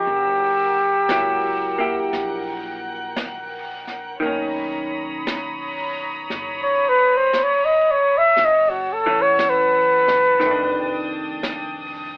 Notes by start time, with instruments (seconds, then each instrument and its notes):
Already playing: trumpet G4, string section A#4
0.05 upright bass F#1, string section F#5 G5 E6, brush sweep
1.09 upright bass C#2, hollow-body jazz guitar F#3 A#3 E4 G4, brush sweep, snare, hi-hat pedal
1.78 hollow-body jazz guitar A#3 E4 G4
2.12 upright bass A#1, string section F#6, brush sweep, snare
3.16 brush sweep, snare, hi-hat pedal
3.87 snare
4.20 upright bass B1, hollow-body jazz guitar D#3 A#3, string section C#5 A#5 B5 D#6, brush sweep
4.26 hollow-body jazz guitar C#4
5.27 brush sweep, snare, hi-hat pedal
6.30 upright bass F#1, brush sweep, snare
6.63 trumpet C#5
6.89 trumpet B4
7.17 trumpet C5
7.33 brush sweep, snare, hi-hat pedal
7.44 trumpet C#5
7.65 trumpet D#5
7.91 trumpet C#5
8.18 trumpet E5
8.36 upright bass F#1, string section F#5 A5 E6, brush sweep, snare
8.45 trumpet D#5
8.70 trumpet F#4
8.93 trumpet A4
9.06 hollow-body jazz guitar E3 A3 C#4
9.22 trumpet C#5
9.39 brush sweep, snare, hi-hat pedal
9.49 trumpet B4
10.08 upright bass F#1, snare
10.40 hollow-body jazz guitar D#3, string section G5, brush sweep, snare
10.44 upright bass F1, hollow-body jazz guitar A3, string section D4 D#6
10.51 hollow-body jazz guitar D4
11.43 brush sweep, snare, hi-hat pedal